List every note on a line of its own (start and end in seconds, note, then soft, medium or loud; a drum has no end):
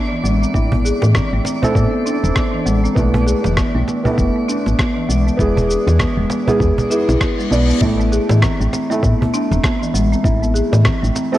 0.00 2.99 A3 medium
0.00 0.11 B3 loud
0.00 7.83 D4 medium
0.00 0.54 E4 medium
0.00 7.83 D5 medium
0.12 0.23 E3 medium
0.24 0.45 A1 medium
0.24 0.40 G#3 medium
0.24 shaker medium
0.42 0.54 C4 medium
0.42 shaker soft
0.54 0.92 A1 loud
0.54 0.71 A3 medium
0.54 1.59 E4 medium
0.54 kick medium
0.54 shaker soft
0.72 0.84 B3 medium
0.72 cajon bass medium
0.85 1.02 G#4 medium
0.85 shaker medium
1.02 1.20 A2 medium
1.02 1.14 E3 medium
1.02 cajon slap medium
1.02 shaker soft
1.15 1.32 C4 medium
1.15 kick loud
1.15 cross-stick medium
1.15 shaker soft
1.33 1.41 A1 medium
1.33 1.44 A3 medium
1.45 1.62 C4 medium
1.45 cajon slap medium
1.45 shaker medium
1.62 1.75 A3 loud
1.62 1.73 C4 medium
1.62 1.74 E4 medium
1.62 1.74 A4 loud
1.62 cajon bass medium
1.62 shaker soft
1.75 1.87 A2 medium
1.75 1.92 B3 medium
1.75 kick medium
1.75 shaker soft
1.93 2.05 B3 medium
2.06 2.22 D4 loud
2.06 shaker medium
2.24 2.32 E1 medium
2.24 2.35 C4 medium
2.24 cajon slap soft
2.24 shaker soft
2.36 2.53 B3 medium
2.36 kick loud
2.36 cross-stick medium
2.36 shaker soft
2.54 2.65 E3 medium
2.66 2.88 A1 medium
2.66 2.83 G#3 loud
2.66 shaker medium
2.84 2.96 C4 medium
2.84 shaker soft
2.95 3.34 B1 loud
2.95 3.13 A3 medium
2.95 4.02 A3 medium
2.95 4.00 B3 medium
2.95 4.01 E4 medium
2.95 kick medium
2.95 shaker soft
3.14 3.26 B3 medium
3.14 cajon bass medium
3.27 3.44 G#4 medium
3.27 cajon slap soft
3.27 shaker medium
3.44 3.62 F1 medium
3.44 3.56 E3 medium
3.44 cajon slap medium
3.44 shaker soft
3.57 3.74 B3 medium
3.57 kick medium
3.57 cross-stick medium
3.57 shaker soft
3.75 3.83 B1 medium
3.75 3.86 A3 medium
3.88 4.04 B3 medium
3.88 cajon slap medium
3.88 shaker medium
4.03 4.17 A3 medium
4.03 5.37 A3 medium
4.03 5.35 B3 medium
4.03 5.36 E4 medium
4.03 cajon bass medium
4.03 shaker soft
4.18 4.29 F1 medium
4.18 4.34 B3 medium
4.18 kick loud
4.18 shaker soft
4.36 4.47 B3 medium
4.48 4.64 D4 loud
4.48 shaker medium
4.66 4.74 A1 medium
4.66 4.77 B3 medium
4.66 cajon slap medium
4.66 shaker soft
4.78 4.96 B3 medium
4.78 kick loud
4.78 cross-stick loud
4.78 shaker soft
4.96 5.08 E3 medium
5.08 5.30 B1 medium
5.08 5.25 G#3 medium
5.08 shaker medium
5.27 5.38 B3 medium
5.27 shaker soft
5.37 5.77 E1 loud
5.37 5.55 G#3 medium
5.37 6.43 B3 medium
5.37 6.44 E4 medium
5.37 kick medium
5.37 shaker soft
5.41 6.45 G#4 loud
5.57 5.68 B3 medium
5.57 cajon bass medium
5.57 shaker soft
5.69 5.86 G#4 medium
5.69 shaker medium
5.87 6.04 E2 medium
5.87 5.98 E3 medium
5.87 cajon slap medium
5.87 shaker soft
5.99 6.17 B3 medium
5.99 kick loud
5.99 cross-stick loud
5.99 shaker soft
6.17 6.25 E1 medium
6.17 6.29 G#3 medium
6.30 6.46 B3 medium
6.30 cajon slap medium
6.30 shaker medium
6.47 6.60 G#3 medium
6.47 6.58 B3 medium
6.47 6.59 E4 medium
6.47 6.59 G#4 loud
6.47 cajon bass medium
6.47 shaker soft
6.60 6.71 E2 medium
6.60 6.77 B3 medium
6.60 kick loud
6.60 reverse cymbal medium
6.60 shaker soft
6.78 6.89 B3 medium
6.78 cajon bass medium
6.78 shaker soft
6.90 7.48 B3 medium
6.90 7.07 E4 medium
6.90 7.48 E4 medium
6.90 7.49 G#4 medium
6.90 shaker medium
7.08 7.16 B1 loud
7.08 7.15 E4 medium
7.08 cajon slap medium
7.08 shaker soft
7.21 7.37 B3 medium
7.21 kick loud
7.21 cross-stick loud
7.21 shaker soft
7.39 7.51 G#3 medium
7.39 shaker soft
7.50 7.73 B1 loud
7.50 7.78 B3 medium
7.50 7.68 B3 medium
7.50 7.79 E4 medium
7.50 7.79 D5 medium
7.50 shaker medium
7.70 7.77 B3 medium
7.70 shaker soft
7.81 8.19 A1 loud
7.81 7.98 A3 medium
7.81 8.87 A3 medium
7.81 8.86 E4 medium
7.81 kick loud
7.81 shaker soft
8.00 8.11 B3 medium
8.00 shaker soft
8.12 8.29 G#4 medium
8.12 cajon slap soft
8.12 shaker medium
8.29 8.47 A2 medium
8.29 8.41 E3 medium
8.29 cajon slap medium
8.29 shaker soft
8.42 8.59 C4 medium
8.42 kick loud
8.42 cross-stick loud
8.42 shaker soft
8.60 8.68 A1 medium
8.60 8.71 A3 medium
8.60 shaker soft
8.73 8.89 C4 medium
8.73 cajon slap medium
8.73 shaker medium
8.90 9.02 A3 loud
8.90 10.22 A3 medium
8.90 10.21 E4 medium
8.90 shaker soft
9.03 9.14 A2 medium
9.03 9.20 B3 medium
9.03 kick loud
9.03 shaker soft
9.21 9.32 B3 medium
9.21 cajon bass medium
9.34 9.50 D4 loud
9.34 shaker medium
9.51 9.59 E1 medium
9.51 9.63 C4 medium
9.51 cajon slap medium
9.51 shaker soft
9.63 9.81 B3 loud
9.63 kick loud
9.63 cross-stick loud
9.63 shaker soft
9.82 9.93 E3 medium
9.82 shaker soft
9.94 10.15 A1 medium
9.94 10.10 G#3 loud
9.94 shaker medium
10.12 10.24 C4 medium
10.12 shaker soft
10.24 10.62 A1 loud
10.24 10.40 A3 medium
10.24 11.29 E4 medium
10.24 kick loud
10.24 shaker soft
10.42 10.53 B3 medium
10.42 shaker soft
10.54 10.71 G#4 medium
10.54 shaker medium
10.72 10.89 A2 medium
10.72 10.83 E3 medium
10.72 cajon slap medium
10.72 shaker soft
10.85 11.02 C4 medium
10.85 kick loud
10.85 cross-stick loud
10.85 shaker soft
11.03 11.11 A1 medium
11.03 11.14 A3 medium
11.03 shaker soft
11.15 11.31 C4 medium
11.15 cajon slap medium
11.15 shaker medium
11.32 11.38 A3 loud
11.32 11.38 C4 medium
11.32 11.38 E4 medium
11.32 11.38 A4 loud
11.32 shaker soft